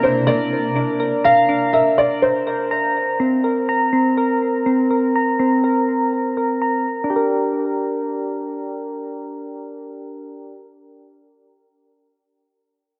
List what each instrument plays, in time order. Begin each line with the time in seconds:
Already playing: synth keys A#4 A#5
0.03 synth keys D4, felt piano C5
0.27 synth keys A#4, felt piano D5
0.75 synth keys D4
1.00 synth keys A#4
1.24 felt piano F5, synth keys A#5
1.49 synth keys D4
1.73 synth keys A#4, felt piano E5
1.98 felt piano D5
2.22 felt piano C5
2.47 synth keys A#4
2.71 synth keys A#5
3.20 synth keys C4
3.44 synth keys A#4
3.69 synth keys A#5
3.93 synth keys C4
4.17 synth keys A#4
4.66 synth keys C4
4.91 synth keys A#4
5.16 synth keys A#5
5.39 synth keys C4
5.64 synth keys A#4
6.37 synth keys A#4
6.62 synth keys A#5
7.04 synth keys D4
7.10 synth keys G4
7.16 synth keys A#4